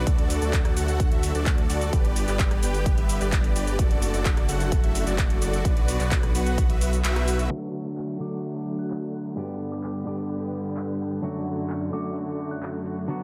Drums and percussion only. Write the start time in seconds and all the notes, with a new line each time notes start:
0.07 kick, closed hi-hat, cabasa
0.18 closed hi-hat
0.30 open hi-hat, cabasa
0.42 closed hi-hat, cabasa
0.53 kick, clap, closed hi-hat, cabasa
0.65 cross-stick, closed hi-hat
0.77 open hi-hat, cabasa
0.88 closed hi-hat, cabasa
1.00 kick, closed hi-hat, cabasa
1.12 closed hi-hat
1.23 open hi-hat, cabasa
1.35 closed hi-hat, cabasa
1.46 kick, clap, closed hi-hat, cabasa
1.58 closed hi-hat
1.70 open hi-hat, cabasa
1.81 closed hi-hat, cabasa
1.93 kick, closed hi-hat, cabasa
2.05 closed hi-hat
2.16 open hi-hat, cabasa
2.28 clap, closed hi-hat, cabasa
2.39 kick, clap, closed hi-hat, cabasa
2.51 cross-stick, closed hi-hat
2.63 open hi-hat, cabasa
2.74 closed hi-hat, cabasa
2.86 kick, closed hi-hat, cabasa
2.98 closed hi-hat
3.09 open hi-hat, cabasa
3.21 closed hi-hat, cabasa
3.32 kick, clap, closed hi-hat, cabasa
3.44 closed hi-hat
3.56 open hi-hat, cabasa
3.67 closed hi-hat, cabasa
3.79 kick, closed hi-hat, cabasa
3.91 closed hi-hat
4.02 open hi-hat, cabasa
4.14 closed hi-hat, cabasa
4.25 kick, clap, closed hi-hat, cabasa
4.37 cross-stick, closed hi-hat
4.49 open hi-hat, cabasa
4.60 closed hi-hat, cabasa
4.72 kick, closed hi-hat, cabasa
4.84 closed hi-hat
4.95 open hi-hat, cabasa
5.07 closed hi-hat, cabasa
5.18 kick, clap, closed hi-hat, cabasa
5.30 closed hi-hat
5.42 open hi-hat, cabasa
5.53 closed hi-hat, cabasa
5.65 kick, closed hi-hat, cabasa
5.77 closed hi-hat
5.88 open hi-hat, cabasa
6.00 clap, closed hi-hat, cabasa
6.11 kick, clap, closed hi-hat, cabasa
6.23 cross-stick, closed hi-hat
6.35 open hi-hat, cabasa
6.46 closed hi-hat, cabasa
6.58 kick, closed hi-hat, cabasa
6.70 closed hi-hat
6.81 open hi-hat, cabasa
6.93 closed hi-hat, cabasa
7.05 clap, closed hi-hat, cabasa
7.16 cross-stick, closed hi-hat
7.28 open hi-hat, cabasa
7.39 closed hi-hat, cabasa
7.98 clap
8.44 closed hi-hat
8.90 clap, closed hi-hat
9.14 closed hi-hat
9.25 closed hi-hat
9.37 closed hi-hat
9.60 closed hi-hat
9.72 clap, closed hi-hat
9.84 clap, closed hi-hat
9.95 closed hi-hat
10.07 closed hi-hat
10.30 closed hi-hat
10.42 closed hi-hat
10.65 closed hi-hat
10.77 clap, closed hi-hat
10.88 closed hi-hat
11.00 closed hi-hat, cabasa
11.12 closed hi-hat
11.23 closed hi-hat
11.35 closed hi-hat
11.46 closed hi-hat, cabasa
11.58 closed hi-hat, cabasa
11.70 clap, closed hi-hat
11.81 closed hi-hat
11.93 closed hi-hat, cabasa
12.05 closed hi-hat, cabasa
12.16 closed hi-hat, cabasa
12.28 closed hi-hat
12.39 cabasa
12.51 closed hi-hat, cabasa
12.63 clap, closed hi-hat
12.74 closed hi-hat
12.86 closed hi-hat, cabasa
12.98 closed hi-hat, cabasa
13.09 closed hi-hat